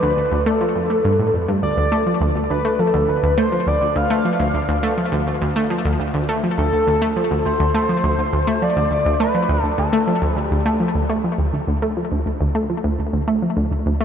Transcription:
0.00 0.11 D2 loud
0.00 0.48 B4 medium
0.17 0.22 D2 medium
0.32 0.40 D2 loud
0.46 0.59 A3 medium
0.46 1.34 A4 medium
0.61 0.66 F3 medium
0.75 0.84 F2 medium
0.90 0.95 A3 medium
1.05 1.17 G2 loud
1.19 1.31 A2 medium
1.34 1.42 F2 medium
1.48 1.61 G2 medium
1.63 1.68 D2 medium
1.63 2.17 D5 loud
1.77 1.85 D2 medium
1.92 2.04 A3 loud
2.06 2.11 F3 medium
2.21 2.29 D2 loud
2.35 2.40 D2 medium
2.50 2.58 D2 loud
2.50 2.81 B4 medium
2.65 2.77 A3 medium
2.79 2.84 F3 medium
2.79 3.10 A4 medium
2.94 3.02 D2 loud
3.08 3.13 D2 medium
3.08 3.38 B4 medium
3.23 3.31 D2 loud
3.38 3.50 A3 loud
3.38 3.69 C5 medium
3.52 3.57 F3 medium
3.67 3.75 D2 medium
3.67 3.98 D5 loud
3.81 3.86 D2 medium
3.96 4.04 D2 medium
3.96 5.13 F5 loud
4.10 4.23 A3 medium
4.25 4.30 F3 medium
4.39 4.48 D2 loud
4.54 4.59 D2 medium
4.68 4.77 D2 loud
4.83 4.95 A3 medium
4.98 5.03 F3 medium
5.12 5.20 D2 loud
5.27 5.32 D2 medium
5.41 5.50 D2 medium
5.56 5.68 A3 medium
5.70 5.75 F3 medium
5.85 5.93 D2 loud
6.00 6.05 D2 medium
6.14 6.22 D2 loud
6.29 6.41 A3 loud
6.44 6.48 F3 medium
6.58 6.66 D2 medium
6.58 7.12 A4 loud
6.73 6.77 D2 medium
6.87 6.95 D2 loud
7.02 7.14 A3 loud
7.16 7.21 F3 medium
7.31 7.39 D2 loud
7.45 7.50 D2 medium
7.45 8.64 C5 loud
7.60 7.68 D2 loud
7.75 7.87 A3 medium
7.89 7.94 F3 medium
8.04 8.12 D2 loud
8.18 8.23 D2 medium
8.33 8.41 D2 medium
8.47 8.60 A3 loud
8.62 8.67 F3 medium
8.62 9.20 D5 loud
8.76 8.85 D2 loud
8.91 8.96 D2 medium
9.05 9.14 D2 loud
9.20 9.32 A3 loud
9.20 9.63 B4 loud
9.35 9.40 F3 medium
9.49 9.57 D2 loud
9.63 9.69 D2 medium
9.63 9.75 A4 loud
9.78 9.86 D2 medium
9.78 10.39 A4 medium
9.93 10.05 A3 loud
10.07 10.12 F3 medium
10.22 10.30 D2 medium
10.37 10.42 D2 medium
10.37 10.62 G4 medium
10.51 10.59 D2 loud
10.66 10.78 A3 loud
10.80 10.85 F3 medium
10.95 11.03 D2 medium
11.09 11.22 A3 loud
11.24 11.29 F3 medium
11.38 11.47 D2 loud
11.53 11.58 D2 medium
11.68 11.76 D2 loud
11.82 11.95 A3 medium
11.97 12.02 F3 medium
12.12 12.20 D2 medium
12.26 12.31 D2 medium
12.41 12.49 D2 loud
12.55 12.67 A3 loud
12.70 12.75 F3 medium
12.84 12.92 D2 loud
12.99 13.04 D2 medium
13.13 13.21 D2 medium
13.28 13.40 A3 medium
13.42 13.47 F3 medium
13.57 13.65 D2 medium
13.71 13.76 D2 medium
13.86 13.94 D2 loud
14.01 14.05 A3 loud

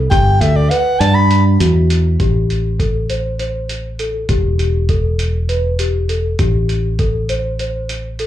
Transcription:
0.11 0.39 G1 medium
0.11 0.34 G4 loud
0.11 0.42 G5 medium
0.11 kick loud
0.11 closed hi-hat medium
0.41 0.69 D2 medium
0.41 0.64 A4 medium
0.41 0.58 E5 medium
0.41 closed hi-hat medium
0.56 0.72 D5 medium
0.70 0.94 B4 medium
0.70 1.01 F#5 medium
0.70 closed hi-hat medium
1.00 1.56 G2 loud
1.00 1.48 D5 medium
1.00 1.16 A5 loud
1.00 closed hi-hat medium
1.15 1.45 B5 medium
1.31 closed hi-hat medium
1.60 2.16 E2 medium
1.60 2.07 F#4 medium
1.60 closed hi-hat medium
1.90 closed hi-hat medium
2.20 4.25 A1 medium
2.20 2.67 G4 medium
2.20 kick medium
2.20 closed hi-hat medium
2.50 closed hi-hat soft
2.80 3.03 A4 medium
2.80 kick medium
2.80 closed hi-hat soft
3.10 3.33 C5 medium
3.10 closed hi-hat medium
3.39 3.87 C5 medium
3.39 closed hi-hat soft
3.69 closed hi-hat medium
3.99 4.23 A4 medium
3.99 closed hi-hat soft
4.29 6.35 E1 medium
4.29 4.53 G4 medium
4.29 kick medium
4.29 closed hi-hat medium
4.59 4.83 G4 medium
4.59 closed hi-hat soft
4.89 5.36 A4 medium
4.89 kick medium
4.89 closed hi-hat medium
5.19 closed hi-hat medium
5.49 5.73 B4 medium
5.49 closed hi-hat soft
5.79 6.03 G4 medium
5.79 closed hi-hat medium
6.09 6.33 A4 medium
6.09 closed hi-hat soft
6.39 8.27 A1 medium
6.39 6.86 G4 medium
6.39 kick medium
6.39 closed hi-hat medium
6.69 closed hi-hat soft
6.99 7.23 A4 medium
6.99 kick medium
6.99 closed hi-hat soft
7.29 7.53 C5 medium
7.29 closed hi-hat medium
7.59 8.07 C5 medium
7.59 closed hi-hat soft
7.89 closed hi-hat medium
8.19 8.27 A4 medium
8.19 closed hi-hat soft

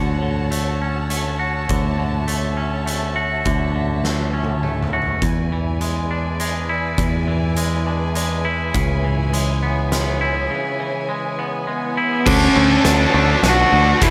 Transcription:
0.00 1.66 D2 medium
0.00 0.22 D3 soft
0.00 0.51 A3 soft
0.00 0.81 C#4 soft
0.00 1.39 F#4 medium
0.00 5.17 F#4 soft
0.00 5.18 C#5 soft
0.00 1.65 F#5 soft
0.00 5.17 A5 medium
0.22 1.69 D3 soft
0.51 1.10 A3 soft
0.51 closed hi-hat soft
0.82 2.57 C#4 soft
1.10 2.27 A3 soft
1.10 closed hi-hat soft
1.39 2.87 F#4 medium
1.67 3.42 D2 medium
1.67 1.97 D3 soft
1.67 5.17 E5 medium
1.67 kick medium
1.67 closed hi-hat soft
1.98 3.44 D3 soft
2.28 2.85 A3 soft
2.28 closed hi-hat soft
2.57 4.04 C#4 soft
2.86 4.04 A3 soft
2.86 closed hi-hat soft
3.16 4.63 F#4 medium
3.45 5.19 D2 medium
3.45 3.74 D3 medium
3.45 kick medium
3.45 closed hi-hat soft
3.75 5.22 D3 soft
4.04 4.62 A3 soft
4.04 snare soft
4.34 5.22 C#4 soft
4.43 high tom medium
4.63 5.22 A3 soft
4.63 mid tom soft
4.83 mid tom medium
4.93 5.22 F#4 medium
5.02 floor tom soft
5.22 6.69 E2 medium
5.22 6.95 E2 medium
5.22 12.22 E4 medium
5.22 12.22 B4 soft
5.22 8.71 D5 soft
5.22 12.22 G#5 medium
5.22 kick medium
5.22 closed hi-hat medium
5.52 7.27 E3 soft
5.81 6.40 G#3 medium
5.81 closed hi-hat soft
6.11 7.57 D4 soft
6.40 7.57 G#3 medium
6.40 closed hi-hat soft
6.69 8.44 E4 medium
6.98 8.71 E2 medium
6.98 8.45 E2 medium
6.98 kick medium
6.98 closed hi-hat soft
7.28 9.04 E3 medium
7.57 8.15 G#3 medium
7.57 closed hi-hat medium
7.86 8.74 D4 medium
8.15 9.33 G#3 medium
8.15 closed hi-hat soft
8.45 10.21 E4 medium
8.74 10.47 C#2 medium
8.74 10.21 C#3 medium
8.74 12.23 C#5 medium
8.74 kick medium
8.74 closed hi-hat medium
9.04 10.51 E3 medium
9.33 9.90 G#3 medium
9.33 closed hi-hat medium
9.63 11.09 B3 medium
9.92 11.08 G#3 medium
9.92 snare medium
9.92 closed hi-hat soft
10.21 11.68 E4 medium
10.50 11.97 C#3 medium
10.80 12.26 E3 medium
11.09 11.66 G#3 medium
11.39 12.26 B3 medium
11.67 12.26 G#3 medium
11.67 12.29 B3 medium
11.97 12.26 E4 medium
12.26 12.47 D2 loud
12.26 12.84 D3 medium
12.26 12.85 A3 loud
12.26 13.14 C#4 loud
12.26 12.85 D4 loud
12.26 14.00 F#4 medium
12.26 14.00 C#5 medium
12.26 14.00 A5 medium
12.26 kick loud
12.26 crash loud
12.56 12.76 D2 medium
12.56 13.14 A3 medium
12.85 13.05 D2 loud
12.85 13.13 D3 medium
12.85 13.71 D3 medium
12.85 13.14 A3 medium
12.85 13.15 D4 medium
12.85 snare medium
12.85 closed hi-hat medium
13.14 13.34 D2 medium
13.14 13.41 D3 medium
13.14 14.10 A3 medium
13.14 13.43 A3 loud
13.14 13.43 D4 loud
13.43 13.63 B1 medium
13.43 14.00 D3 loud
13.43 14.02 A3 loud
13.43 14.04 D4 loud
13.43 14.05 F#4 loud
13.43 snare medium
13.43 closed hi-hat medium
13.73 13.93 D2 medium
13.73 14.02 D3 medium
14.01 14.10 E1 loud
14.01 14.10 E2 medium
14.01 14.10 B2 medium
14.01 14.10 E3 loud
14.01 14.10 E4 loud
14.01 14.10 A4 medium
14.01 14.10 E5 medium
14.01 14.10 B5 medium
14.01 kick loud
14.01 closed hi-hat loud

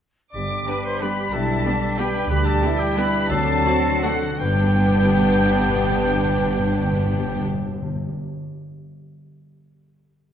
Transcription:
0.32 0.62 G1 soft
0.32 1.35 G2 soft
0.32 2.26 G3 soft
0.32 2.27 G3 soft
0.32 1.30 B3 soft
0.32 0.80 D5 soft
0.32 0.81 D6 medium
0.32 2.26 B6 soft
0.50 1.35 D3 soft
0.67 0.75 G3 soft
0.67 0.75 B3 soft
0.67 0.75 D4 soft
0.67 1.18 D4 soft
0.67 0.75 G4 soft
0.67 1.00 B4 soft
0.85 1.81 B4 soft
0.85 1.03 C5 medium
0.85 1.02 C6 medium
1.01 1.10 G3 soft
1.01 1.10 B3 soft
1.01 1.10 D4 soft
1.01 1.09 G4 soft
1.01 1.99 G4 soft
1.01 1.34 G4 soft
1.01 1.34 B4 medium
1.01 1.33 B5 medium
1.19 1.65 D4 soft
1.32 1.59 B1 medium
1.32 2.32 B2 soft
1.32 3.31 D4 medium
1.32 1.66 E4 medium
1.32 1.98 A4 medium
1.32 1.99 A5 medium
1.50 3.32 G3 soft
1.65 1.74 G3 soft
1.65 1.74 B3 soft
1.65 1.73 D4 soft
1.65 2.15 D4 soft
1.65 1.99 D4 medium
1.65 1.73 G4 soft
1.82 2.96 B4 soft
1.98 2.07 G3 soft
1.98 2.07 B3 medium
1.98 2.06 D4 medium
1.98 2.06 G4 medium
1.98 2.29 G4 medium
1.98 2.61 G4 soft
1.98 2.30 B4 medium
1.98 2.30 G5 medium
2.16 3.64 D4 soft
2.29 2.57 D2 medium
2.29 2.76 D3 medium
2.29 3.29 D3 medium
2.29 3.29 G3 medium
2.29 3.32 G3 medium
2.29 2.62 G4 medium
2.29 2.47 B4 medium
2.29 2.46 B5 medium
2.29 3.33 B6 medium
2.45 3.32 B3 medium
2.45 2.81 A4 medium
2.45 2.80 A5 medium
2.61 2.72 G3 medium
2.61 2.71 B3 medium
2.61 2.69 D4 medium
2.61 3.31 E4 medium
2.61 2.69 G4 medium
2.61 3.13 G4 medium
2.79 2.97 G4 medium
2.79 4.75 D5 medium
2.79 2.96 G5 medium
2.96 3.06 G3 medium
2.96 3.05 B3 medium
2.96 3.04 D4 medium
2.96 3.04 G4 medium
2.96 3.32 B4 medium
2.96 3.29 B4 medium
2.96 3.31 B5 medium
3.15 3.32 G4 medium
3.30 3.59 D2 medium
3.30 3.36 D3 soft
3.30 4.43 D3 medium
3.30 4.23 F#3 medium
3.30 4.21 C4 medium
3.30 3.65 D4 medium
3.30 4.02 A4 medium
3.30 4.03 A5 loud
3.30 4.23 C7 medium
3.45 3.51 D3 soft
3.45 4.43 A3 soft
3.61 3.69 D3 soft
3.65 3.74 A3 medium
3.65 3.74 C4 medium
3.65 4.22 D4 medium
3.65 3.74 D4 medium
3.65 4.04 F#4 medium
3.65 3.73 F#4 medium
3.79 3.86 D3 medium
3.85 3.95 D3 medium
3.85 4.43 C5 medium
3.96 4.04 D3 medium
4.02 4.12 D3 medium
4.02 4.11 A3 medium
4.02 4.11 C4 medium
4.02 4.10 D4 medium
4.02 4.10 F#4 medium
4.02 4.40 F#4 medium
4.02 4.43 F#4 soft
4.02 4.23 A4 medium
4.02 4.42 F#5 medium
4.14 4.22 D3 medium
4.23 4.31 D3 medium
4.23 4.61 D4 soft
4.32 4.39 D3 medium
4.41 7.44 G1 medium
4.41 4.47 G2 medium
4.41 7.44 G2 medium
4.41 8.32 G2 medium
4.41 7.44 G3 medium
4.41 7.44 B3 medium
4.41 7.44 D4 medium
4.41 7.44 G4 medium
4.41 7.44 G5 medium
4.41 7.44 G6 medium
4.47 4.54 G2 medium
4.47 8.18 G3 medium
4.54 4.61 G2 medium
4.54 8.21 B3 medium
4.61 4.68 G2 medium
4.61 8.25 D4 soft
4.68 4.75 G2 medium
4.68 8.28 G4 medium
4.75 4.82 G2 medium
4.75 8.32 D5 medium
4.82 4.88 G2 medium
4.89 4.95 G2 medium
4.95 5.02 G2 medium
5.02 5.09 G2 medium
5.09 5.15 G2 medium
5.15 5.22 G2 medium
5.22 5.28 G2 medium
5.28 5.35 G2 medium
5.35 5.42 G2 medium
5.42 5.49 G2 medium
5.49 5.56 G2 medium
5.56 5.62 G2 medium
5.62 5.69 G2 medium
5.69 5.76 G2 medium
5.76 5.83 G2 medium
5.83 5.90 G2 medium
5.90 5.97 G2 medium
5.97 6.04 G2 medium
6.04 6.10 G2 medium
6.10 6.17 G2 medium
6.17 6.24 G2 medium
6.24 6.31 G2 medium
6.32 6.39 G2 medium
6.39 6.46 G2 medium
6.46 6.52 G2 medium
6.52 6.59 G2 medium
6.59 6.66 G2 medium
6.66 6.73 G2 medium
6.73 6.79 G2 medium
6.79 6.86 G2 medium
6.86 6.93 G2 medium
6.93 6.99 G2 medium
6.99 7.06 G2 medium
7.06 7.13 G2 medium
7.13 7.20 G2 medium
7.20 7.26 G2 medium
7.26 7.33 G2 medium
7.33 7.40 G2 medium
7.40 7.47 G2 medium
7.47 7.54 G2 medium
7.54 7.60 G2 medium
7.61 7.68 G2 medium
7.68 7.75 G2 medium
7.75 7.82 G2 medium
7.82 7.88 G2 medium
7.88 7.95 G2 medium
7.95 8.02 G2 medium
8.02 8.09 G2 medium
8.09 8.15 G2 medium

